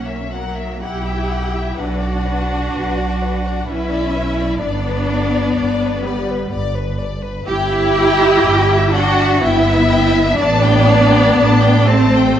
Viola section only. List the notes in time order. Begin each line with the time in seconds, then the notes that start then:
Already playing: A#3
0.32 F#3
0.84 E4
1.80 D4
3.68 C#4
4.59 B3
6.04 G3
7.46 E4
8.93 D4
9.41 B3
10.37 B3
11.86 A3